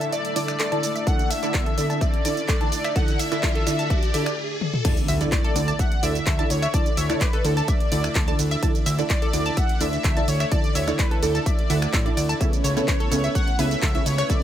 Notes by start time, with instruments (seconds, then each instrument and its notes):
Already playing: synth pluck D3 E4 A4 D5, supersaw synth A3 D4 E4 A4 E5, synth texture A4 A5, analog synth lead E5, riser
0.01 synth arpeggio sound A5, closed hi-hat, shaker
0.12 analog synth lead D5, synth arpeggio sound E5, closed hi-hat, shaker
0.25 closed hi-hat
0.36 synth pluck D3 E4 A4 D5, synth arpeggio sound D5, analog synth lead D5, open hi-hat, shaker
0.48 finger snap, closed hi-hat, shaker
0.59 synth arpeggio sound A4, clap, closed hi-hat, shaker
0.72 synth pluck D3 E4 A4 D5, synth arpeggio sound A5, closed hi-hat
0.83 open hi-hat, shaker
0.95 synth arpeggio sound E5, closed hi-hat, shaker
1.07 synth pluck D3 E4 A4 D5, analog synth lead F#5, synth arpeggio sound A5, kick, closed hi-hat, shaker
1.19 closed hi-hat, shaker
1.30 synth arpeggio sound E5, analog synth lead E5, open hi-hat, shaker
1.43 synth pluck D3 E4 A4 D5, closed hi-hat, shaker
1.54 synth arpeggio sound D5, kick, clap, closed hi-hat, shaker
1.66 synth arpeggio sound A4, closed hi-hat
1.78 synth pluck D3 E4 A4 D5, open hi-hat, shaker
1.90 synth arpeggio sound A5, closed hi-hat, shaker
2.01 analog synth lead D5, synth arpeggio sound E5, kick, closed hi-hat, shaker
2.14 closed hi-hat
2.25 synth pluck D3 E4 A4 D5, synth arpeggio sound D5, analog synth lead D5, open hi-hat, shaker
2.37 closed hi-hat, shaker
2.48 synth arpeggio sound A4, kick, clap, closed hi-hat, shaker
2.61 synth pluck D3 E4 A4 D5, synth arpeggio sound A5, closed hi-hat
2.72 open hi-hat, shaker
2.84 synth arpeggio sound E5, finger snap, closed hi-hat, shaker
2.96 synth pluck D3 E4 A4 D5, analog synth lead F#5, synth arpeggio sound A5, kick, closed hi-hat, shaker
3.08 closed hi-hat, shaker
3.19 synth arpeggio sound E5, analog synth lead E5, open hi-hat, shaker
3.32 synth pluck D3 E4 A4 D5, finger snap, closed hi-hat, shaker
3.43 synth arpeggio sound D5, kick, clap, closed hi-hat, shaker
3.55 synth arpeggio sound A4, closed hi-hat
3.67 synth pluck D3 E4 A4 D5, finger snap, open hi-hat, shaker
3.79 synth arpeggio sound A5, closed hi-hat, shaker
3.90 analog synth lead D5, synth arpeggio sound E5, kick, closed hi-hat, shaker
4.03 closed hi-hat, shaker
4.14 synth pluck D3 E4 A4 D5, synth arpeggio sound E5, open hi-hat, shaker
4.26 finger snap, closed hi-hat, shaker
4.61 high tom
4.74 mid tom
4.85 synth pluck D3 E4 A4 D5, supersaw synth A3 D4 E4 D5 E5, synth arpeggio sound A5 A6, kick, closed hi-hat, crash, impact, shaker
4.97 closed hi-hat, shaker
5.08 analog synth bass D2, synth arpeggio sound E5 E6, open hi-hat, shaker
5.21 synth pluck D3 E4 A4 D5, closed hi-hat, shaker
5.32 synth arpeggio sound D5 D6, analog synth lead D5, kick, clap, closed hi-hat, shaker
5.44 synth arpeggio sound A4 A5, closed hi-hat
5.56 analog synth bass D2, synth pluck D3 E4 A4 D5, open hi-hat, shaker
5.68 synth arpeggio sound A5 A6, closed hi-hat, shaker
5.79 synth arpeggio sound E5 E6, analog synth lead F#5, kick, closed hi-hat, shaker
5.92 closed hi-hat
6.03 analog synth bass D2, synth pluck D3 E4 A4 D5, synth arpeggio sound D5 D6, analog synth lead E5, open hi-hat, shaker
6.15 closed hi-hat, shaker
6.26 analog synth bass D2, synth arpeggio sound A4 A5, kick, clap, closed hi-hat, shaker
6.39 synth pluck D3 E4 A4 D5, synth arpeggio sound A5 A6, closed hi-hat
6.50 analog synth bass D2, analog synth lead C#5, open hi-hat, shaker
6.62 synth arpeggio sound E5 E6, finger snap, closed hi-hat, shaker
6.74 synth pluck D3 E4 A4 D5, analog synth lead D5, synth arpeggio sound A5 A6, kick, closed hi-hat, shaker
6.86 closed hi-hat, shaker
6.97 analog synth bass D2, analog synth lead C#5, synth arpeggio sound E5 E6, open hi-hat, shaker
7.10 synth pluck D3 E4 A4 D5, finger snap, closed hi-hat, shaker
7.21 analog synth lead B4, synth arpeggio sound D5 D6, kick, clap, closed hi-hat, shaker
7.33 synth arpeggio sound A4 A5, closed hi-hat
7.45 analog synth bass D2, synth pluck D3 E4 A4 D5, analog synth lead A4, open hi-hat, shaker
7.57 synth arpeggio sound A5 A6, closed hi-hat, shaker
7.68 analog synth lead D5, synth arpeggio sound E5 E6, kick, closed hi-hat, shaker
7.80 closed hi-hat
7.92 analog synth bass D2, synth pluck D3 E4 A4 D5, synth arpeggio sound D5 D6, open hi-hat, shaker
8.04 finger snap, closed hi-hat, shaker
8.15 analog synth bass D2, synth arpeggio sound A4 A5, kick, clap, closed hi-hat, shaker
8.28 synth pluck D3 E4 A4 D5, synth arpeggio sound A5 A6, closed hi-hat
8.39 analog synth bass D2, open hi-hat, shaker
8.51 synth arpeggio sound E5 E6, closed hi-hat, shaker
8.63 synth pluck D3 E4 A4 D5, synth arpeggio sound A5 A6, kick, closed hi-hat, shaker
8.75 closed hi-hat, shaker
8.86 analog synth bass D2, synth arpeggio sound E5 E6, open hi-hat, shaker
8.99 synth pluck D3 E4 A4 D5, closed hi-hat, shaker
9.10 synth arpeggio sound D5 D6, analog synth lead D5, kick, clap, closed hi-hat, shaker
9.22 synth arpeggio sound A4 A5, closed hi-hat
9.33 analog synth bass D2, synth pluck D3 E4 A4 D5, open hi-hat, shaker
9.46 synth arpeggio sound A5 A6, closed hi-hat, shaker
9.57 synth arpeggio sound E5 E6, analog synth lead F#5, kick, closed hi-hat, shaker
9.69 closed hi-hat
9.81 analog synth bass D2, synth pluck D3 E4 A4 D5, synth arpeggio sound D5 D6, analog synth lead E5, open hi-hat, shaker
9.93 closed hi-hat, shaker
10.04 analog synth bass D2, synth arpeggio sound A4 A5, kick, clap, closed hi-hat, shaker
10.17 synth pluck D3 E4 A4 D5, synth arpeggio sound A5 A6, closed hi-hat
10.28 analog synth bass D2, analog synth lead C#5, open hi-hat, shaker
10.40 synth arpeggio sound E5 E6, finger snap, closed hi-hat, shaker
10.52 synth pluck D3 E4 A4 D5, analog synth lead D5, synth arpeggio sound A5 A6, kick, closed hi-hat, shaker
10.64 closed hi-hat, shaker
10.75 analog synth bass D2, analog synth lead C#5, synth arpeggio sound E5 E6, open hi-hat, shaker
10.88 synth pluck D3 E4 A4 D5, finger snap, closed hi-hat, shaker
10.99 analog synth lead B4, synth arpeggio sound D5 D6, kick, clap, closed hi-hat, shaker
11.11 synth arpeggio sound A4 A5, closed hi-hat
11.22 analog synth bass D2, synth pluck D3 E4 A4 D5, analog synth lead A4, open hi-hat, shaker
11.35 synth arpeggio sound A5 A6, closed hi-hat, shaker
11.46 analog synth lead D5, synth arpeggio sound E5 E6, kick, closed hi-hat, shaker
11.59 closed hi-hat
11.70 analog synth bass D2, synth pluck D3 E4 A4 F#5, synth arpeggio sound E5 E6, open hi-hat, shaker
11.82 finger snap, closed hi-hat, shaker
11.93 analog synth bass A1, synth arpeggio sound E6, kick, clap, closed hi-hat, shaker
12.06 synth pluck D3 E4 A4 D5, synth arpeggio sound D5 D6, closed hi-hat
12.17 analog synth bass D2, synth arpeggio sound D5 D6, open hi-hat, shaker
12.29 synth arpeggio sound A5 A6, closed hi-hat, shaker
12.40 synth pluck C#3 B3 C#4 E4 A4 C#5, supersaw synth C#4 B4 C#5, synth arpeggio sound E5 E6, kick, closed hi-hat, shaker
12.53 closed hi-hat, shaker
12.64 analog synth bass C#2, synth arpeggio sound C#5 C#6, open hi-hat, shaker
12.77 synth pluck C#3 B3 C#4 E4 A4 C#5, closed hi-hat, shaker
12.88 synth arpeggio sound B4 B5, analog synth lead C#5, kick, clap, closed hi-hat, shaker
13.00 synth arpeggio sound A4 A5, closed hi-hat
13.11 analog synth bass C#2, synth pluck C#3 B3 C#4 E4 A4 C#5, open hi-hat, shaker
13.24 synth arpeggio sound E5 E6, closed hi-hat, shaker
13.35 synth arpeggio sound C#5 C#6, analog synth lead F#5, kick, closed hi-hat, shaker
13.48 closed hi-hat
13.59 analog synth bass C#2, synth pluck C#3 B3 C#4 E4 A4 C#5, synth arpeggio sound B4 B5, analog synth lead E5, open hi-hat, shaker
13.71 closed hi-hat, shaker
13.82 analog synth bass C#2, synth arpeggio sound A4 A5, kick, clap, closed hi-hat, shaker
13.95 synth pluck C#3 B3 C#4 E4 A4 C#5, synth arpeggio sound E5 E6, closed hi-hat
14.06 analog synth bass C#2, analog synth lead C#5, open hi-hat, shaker
14.18 synth arpeggio sound C#5 C#6, finger snap, closed hi-hat, shaker
14.30 synth pluck C#3 B3 C#4 E4 A4 C#5, analog synth lead D5, synth arpeggio sound E5 E6, kick, closed hi-hat, shaker